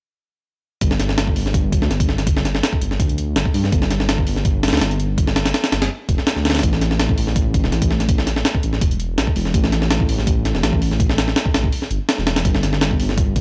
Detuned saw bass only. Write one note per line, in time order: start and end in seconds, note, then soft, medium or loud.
0.81 1.35 G1 loud
1.36 1.80 G1 loud
1.82 1.90 D2 loud
1.90 2.62 G1 medium
2.81 2.98 G1 medium
3.00 3.35 D2 medium
3.36 3.45 G1 medium
3.54 3.71 G2 loud
3.72 4.26 G1 loud
4.27 4.71 G1 medium
4.73 4.80 D2 loud
4.81 5.53 G1 medium
5.72 5.89 G1 medium
6.09 6.17 F1 loud
6.36 6.62 D2 medium
6.63 7.16 A1 loud
7.18 7.62 A1 medium
7.64 7.72 E1 loud
7.72 8.44 A1 medium
8.63 8.80 A1 loud
8.81 9.16 E1 medium
9.18 9.26 A1 medium
9.36 9.52 E1 loud
9.54 10.07 A1 loud
10.09 10.53 A1 medium
10.54 10.62 E1 loud
10.63 11.35 A1 medium
11.54 11.71 A1 medium
11.91 11.99 G1 loud
12.18 12.44 E1 medium
12.45 12.98 G1 loud
12.99 13.41 G1 medium